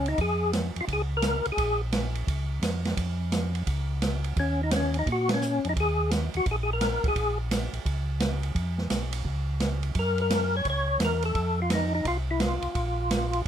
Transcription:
Already playing: C#2
0.06 D#4, ride
0.18 F2 G#4, kick, ride
0.53 snare, hi-hat pedal, ride
0.76 F2, ride
0.81 F4
0.87 C#2, kick, ride
0.93 G#4
1.17 A#4
1.22 snare, hi-hat pedal, ride
1.45 C#2, ride
1.52 G#4
1.57 A#1, kick, ride
1.92 snare, hi-hat pedal, ride
2.15 ride
2.27 C#2, kick, ride
2.62 F2, snare, hi-hat pedal, ride
2.85 snare, ride
2.97 F2, kick, ride
3.32 snare, hi-hat pedal, ride
3.55 ride
3.66 C#2, kick, ride
4.02 snare, hi-hat pedal, ride
4.24 ride
4.36 D#2 C#4, kick, ride
4.63 D#4
4.71 C4, snare, hi-hat pedal, ride
4.76 C#4
4.94 ride
4.99 D#4
5.06 A#2, kick, ride
5.12 F#4
5.29 snare, ride
5.34 C#4
5.42 hi-hat pedal
5.64 F2, ride
5.69 D#4
5.76 D#2 G#4, kick, ride
6.11 snare, hi-hat pedal, ride
6.34 D#2 F#4, ride
6.46 A#1, kick, ride
6.51 G#4
6.63 G#4
6.73 A#4
6.81 snare, hi-hat pedal, ride
7.04 A#1, kick, ride
7.08 G#4
7.15 A#1, kick, ride
7.51 snare, hi-hat pedal, ride
7.73 A#1, ride
7.85 C#2, kick, ride
8.20 snare, hi-hat pedal, ride
8.43 ride
8.55 F2, kick, ride
8.78 snare
8.89 B1, snare, hi-hat pedal, ride
9.12 ride
9.24 C#2, kick
9.60 snare, hi-hat pedal, ride
9.83 ride
9.95 F#2, kick, ride
9.99 A#4
10.18 A#4, ride
10.30 snare, hi-hat pedal, ride
10.57 C#5
10.65 C#2, kick, ride
10.70 C#5
10.99 E2, snare, hi-hat pedal, ride
11.05 A#4
11.22 A4, ride
11.35 F2, kick, ride
11.62 F4
11.70 D#4, snare, hi-hat pedal, ride
11.95 D#4
12.04 C2 F4, kick, ride
12.31 E4
12.40 F4, snare, hi-hat pedal, ride
12.62 C2, ride
12.75 A#1, kick, ride
13.11 snare, hi-hat pedal, ride
13.33 ride

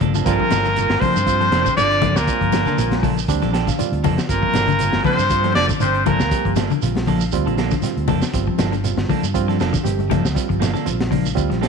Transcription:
0.01 G1 F3 A#3 D4 A4, kick, closed hi-hat, low conga, shekere
0.14 G3 A#3 C4 D4 F4 A4, closed hi-hat, low conga, shekere
0.25 G1 A#2 F3 G3 A#3 C4 D4 F4 A4 A#4, kick, closed hi-hat, high conga, shekere
0.40 F3, kick
0.51 G1 F3 A#3 D4 A4, snare, closed hi-hat, high conga, shekere
0.65 D3, snare, closed hi-hat, shekere
0.76 G3 C4 F4, closed hi-hat, high conga, shekere
0.90 G1, snare, high conga
1.00 C3 F3 A#3 C4 D4 A4 C5, kick, open hi-hat, low conga, shekere
1.15 G2, closed hi-hat, high conga, shekere
1.26 G3 C4 F4, kick, closed hi-hat, high conga, shekere
1.40 F3 A#3 D4 A4, closed hi-hat
1.51 F1 F3 A#3 D4 A4, snare, closed hi-hat, shekere
1.65 D3, kick, closed hi-hat, shekere
1.77 G1 D3 G3 C4 D4 F4 D5, closed hi-hat, high conga, shekere
1.91 closed hi-hat
2.01 F3 A#3 D4 A4, kick, snare, closed hi-hat, high conga, low conga, shekere
2.15 D2 A#2 A#3 A#4, snare, shekere
2.26 G3 C4 F4, kick, closed hi-hat, high conga, shekere
2.41 G1 F3, kick, closed hi-hat
2.52 F3 A#3 D4 A4, snare, closed hi-hat, high conga, shekere
2.66 D3 A#3 D4 A4, snare, closed hi-hat, low conga, shekere
2.77 A#1 G3 C4 F4, closed hi-hat, high conga, shekere
2.91 snare, closed hi-hat, high conga
3.03 F3 A#3 D4 A4, kick, open hi-hat, low conga, shekere
3.18 shekere
3.28 D2 G3 C4 D4, kick, closed hi-hat, high conga, shekere
3.42 A#1 F3 A#3 D4 A4, snare, closed hi-hat
3.52 F3 D4 A4 G5, muted clean electric guitar stroke, snare, closed hi-hat, shekere
3.67 D3 F5, kick, snare, closed hi-hat, shekere
3.79 G3 C4 F4 D5, closed hi-hat, high conga, shekere
3.92 D2, closed hi-hat
4.03 F1 F3 A#3 D4 A4, kick, open hi-hat, high conga, low conga, shekere
4.18 snare, closed hi-hat, shekere
4.28 G1 A#2 G3 A#3 C4 F4 A#4, kick, closed hi-hat, high conga, shekere
4.42 F3, kick
4.53 G1 F3 A#3 D4 A4, snare, closed hi-hat, high conga, shekere
4.67 D3, closed hi-hat, low conga, shekere
4.79 G3 C4 F4, closed hi-hat, high conga, shekere
4.93 G1, snare, high conga
5.04 C3 F3 A#3 C4 D4 A4 C5, kick, open hi-hat, low conga, shekere
5.17 G2, closed hi-hat, high conga, shekere
5.30 G3 C4 F4, kick, closed hi-hat, high conga, shekere
5.43 F3 A#3 D4 A4, snare, closed hi-hat
5.55 F1 D3 F3 A#3 D4 A4 D5, snare, closed hi-hat, shekere
5.69 D3, kick, snare, closed hi-hat, shekere
5.79 G1 C3 G3 C4 D4 C5, closed hi-hat, high conga, shekere
5.94 closed hi-hat
6.05 A#2 F3 A#3 D4 A4 A#4, kick, closed hi-hat, high conga, low conga, shekere
6.20 D2, snare, shekere
6.31 G3 C4 G4, kick, snare, closed hi-hat, high conga, shekere
6.45 G1 F3, kick, closed hi-hat
6.56 F3 A#3 D4 A4, snare, closed hi-hat, high conga, shekere
6.70 D3, closed hi-hat, low conga, shekere
6.82 A#1 G3 C4 F4, closed hi-hat, high conga, shekere
6.95 snare, closed hi-hat, high conga
7.06 F3 A#3 D4 A4, kick, open hi-hat, low conga, shekere
7.20 shekere
7.32 D2 G3 C4 F4, kick, closed hi-hat, shekere
7.46 A#1 D3 A#3 D4 A4, closed hi-hat
7.57 F3 A#3 D4 A4, snare, closed hi-hat, shekere
7.71 D3, kick, snare, closed hi-hat, shekere
7.82 G3 C4 F4, snare, closed hi-hat, high conga, shekere
7.97 D2, closed hi-hat
8.08 F1 F3 A#3 D4 A4, kick, open hi-hat, high conga, low conga, shekere
8.22 snare, closed hi-hat, shekere
8.32 G1 G3 C4 F4, kick, snare, closed hi-hat, high conga, shekere
8.47 F3, kick
8.58 G1 F3 A#3 D4 A4, snare, closed hi-hat, high conga, shekere
8.72 D3, snare, closed hi-hat, shekere
8.83 G3 C4 F4, closed hi-hat, high conga, shekere
8.97 G1, snare, high conga
9.09 F3 A#3 D4 A4, kick, open hi-hat, low conga, shekere
9.23 G2, closed hi-hat, shekere
9.34 G3 C4 F4, kick, closed hi-hat, shekere
9.48 F3 A#3 D4 A4, snare, closed hi-hat
9.60 F1 F3 A#3 D4 A4, snare, closed hi-hat, shekere
9.73 D3, kick, snare, closed hi-hat, shekere
9.84 G1 G3 C4 G4, closed hi-hat, high conga, shekere
9.99 closed hi-hat, high conga
10.10 F3 A#3 D4 A4, kick, snare, closed hi-hat, high conga, low conga, shekere
10.23 D2, snare, shekere
10.35 G3 C4 F4, kick, snare, closed hi-hat, high conga, shekere
10.49 G1 F3, kick, closed hi-hat
10.60 F3 A#3 D4 A4, snare, closed hi-hat, high conga, shekere
10.73 D3 A#3 D4 A4, snare, closed hi-hat, shekere
10.85 A#1 G3 C4 F4, closed hi-hat, high conga, shekere
11.00 snare, closed hi-hat, high conga
11.11 F3 A#3 D4, kick, open hi-hat, low conga, shekere
11.26 high conga, shekere
11.35 D2 G3 C4 F4, kick, closed hi-hat, high conga, shekere
11.50 A#1 F3, snare, closed hi-hat
11.61 F3 A#3 D4 A4 G5, snare, closed hi-hat, shekere

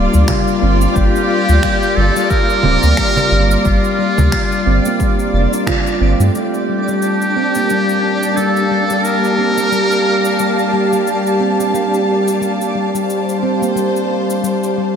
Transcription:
Already playing: G3 A#3 D4 F4 D5 F5
0.14 D2 G3, cabasa
0.28 finger snap, kick, frame drum, cabasa
0.48 cabasa
0.62 G1 C4
0.81 A#3, cabasa
0.94 G1 G3 G4, kick, cabasa
1.16 cabasa
1.49 D2, cabasa
1.63 G3, finger snap, kick, cabasa
1.83 cabasa
1.96 G1 G3 A4
2.16 G3, cabasa
2.30 A#4, kick, cabasa
2.50 cabasa
2.63 D1 C4, frame drum
2.83 D2 A#3, cabasa
2.97 G3, finger snap, kick, cabasa
3.16 frame drum, cabasa
3.31 G1
3.51 cabasa
3.65 G1 G3 F4, kick, cabasa
3.84 cabasa
3.99 G3
4.18 D2 G3, frame drum, cabasa
4.32 finger snap, kick, cabasa
4.52 cabasa
4.66 G1 C4
4.85 A#3, cabasa
5.00 G3, kick, cabasa
5.19 cabasa
5.33 F1
5.53 cabasa
5.67 F4, finger snap, kick, frame drum, cabasa
5.87 cabasa
6.01 G1 C4
6.19 G2 A3, cabasa
6.34 G3 D4 G4 D5, cabasa
6.54 cabasa
6.69 G3 G4
6.88 G3, cabasa
6.96 A5
7.02 cabasa
7.22 cabasa
7.36 C4
7.55 A#3, cabasa
7.70 G3 A#3 F5, cabasa
7.89 cabasa
8.23 cabasa
8.37 G3 A4, cabasa
8.56 cabasa
8.71 G3
8.90 G3, cabasa
9.04 A#4, cabasa
9.24 cabasa
9.38 C4
9.57 A#3, cabasa
9.72 G3, cabasa
9.92 cabasa
10.25 cabasa
10.39 G3, cabasa
10.59 cabasa
10.73 G3
10.93 G3, cabasa
11.07 cabasa
11.27 cabasa
11.40 C4
11.60 A#3, cabasa
11.74 G3, cabasa
11.94 cabasa
12.28 cabasa
12.41 G3, cabasa
12.61 cabasa
12.75 G3
12.95 G3, cabasa
13.01 C5
13.10 cabasa
13.29 cabasa
13.43 C4
13.62 A#3, cabasa
13.76 G3, cabasa
13.96 cabasa
14.30 cabasa
14.43 G3, cabasa
14.64 cabasa
14.78 G3

